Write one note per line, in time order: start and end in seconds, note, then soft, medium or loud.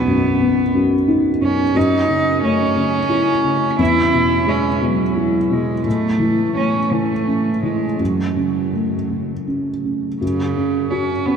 0.00 1.71 B1 soft
0.00 0.74 B3 medium
0.08 0.62 F#2 soft
0.41 0.95 B3 soft
0.75 1.28 F#2 soft
1.08 1.62 D#4 soft
1.41 1.73 F#2 soft
1.41 1.78 C#4 medium
1.75 3.75 F#2 soft
1.75 2.44 D#4 medium
2.09 2.63 C#3 soft
2.42 2.97 A3 soft
2.42 3.77 C#4 medium
2.76 3.31 C#3 soft
3.09 3.65 E4 soft
3.44 3.79 C#3 soft
3.79 5.81 E2 soft
3.79 4.50 E4 medium
4.14 4.68 B2 soft
4.47 5.02 G#3 soft
4.47 4.85 C#4 medium
4.82 5.37 B2 soft
4.82 5.54 F#3 soft
5.16 5.71 E4 soft
5.51 5.85 B2 soft
5.51 5.86 G#3 soft
5.85 7.96 A2 soft
5.85 6.55 A3 medium
6.19 6.76 E3 soft
6.55 7.12 A3 soft
6.55 6.94 C#4 soft
6.91 7.49 E3 soft
6.91 7.64 A3 soft
7.27 7.85 C#4 soft
7.63 8.00 E3 soft
7.63 8.02 G#3 soft
7.99 10.17 F#2 soft
7.99 9.11 F#3 soft
8.36 8.96 C#3 soft
8.73 9.33 A3 soft
9.10 9.70 C#3 soft
9.47 10.07 C#4 soft
9.85 10.21 C#3 soft
10.21 11.37 F#2 soft
10.21 10.92 C#3 soft
10.56 11.12 C#4 soft
10.91 11.28 C#4 soft
10.91 11.37 F#4 soft
11.26 11.37 B3 medium
11.26 11.37 C#4 soft